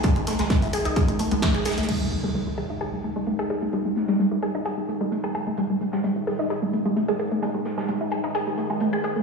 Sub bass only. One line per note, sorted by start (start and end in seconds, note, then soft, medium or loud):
0.16 0.26 G#1 medium
0.27 0.38 G#1 loud
0.39 0.50 G#1 medium
0.62 0.72 G#1 medium
0.73 0.85 G#1 loud
0.85 0.96 G#1 medium
1.08 1.19 G#1 medium
1.19 1.31 G#1 loud
1.31 1.42 G#1 medium
1.55 1.65 G#1 medium
1.65 1.77 G#1 loud
1.78 1.88 G#1 medium